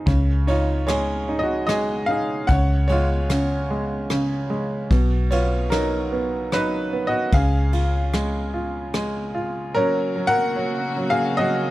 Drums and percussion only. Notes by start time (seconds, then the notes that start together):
0.07 kick, ride
0.48 ride
0.88 cross-stick, ride
1.69 cross-stick, ride
2.49 kick, ride
2.89 ride
3.29 cross-stick, ride
4.10 cross-stick, ride
4.91 kick, ride
5.31 ride
5.71 cross-stick, ride
6.52 cross-stick, ride
7.32 kick, ride
7.73 ride
8.13 cross-stick, ride
8.94 cross-stick, ride